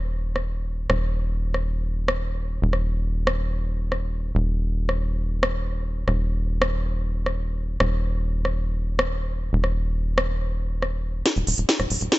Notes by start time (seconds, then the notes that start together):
Already playing: D#1
0.36 cross-stick
0.90 D#1, cross-stick
1.54 cross-stick
2.08 cross-stick
2.62 D#1
2.73 cross-stick
3.27 cross-stick
3.92 cross-stick
4.35 D#1
4.89 cross-stick
5.43 cross-stick
6.08 D#1, cross-stick
6.62 cross-stick
7.26 cross-stick
7.80 D#1, cross-stick
8.45 cross-stick
8.99 cross-stick
9.53 D#1
9.64 cross-stick
10.18 cross-stick
10.82 cross-stick
11.26 snare, closed hi-hat
11.36 D#1, closed hi-hat
11.47 D#1, open hi-hat
11.58 D#1, closed hi-hat
11.69 snare, closed hi-hat
11.80 D#1, cross-stick, closed hi-hat
11.90 D#1, open hi-hat
12.01 D#1, closed hi-hat
12.12 snare, closed hi-hat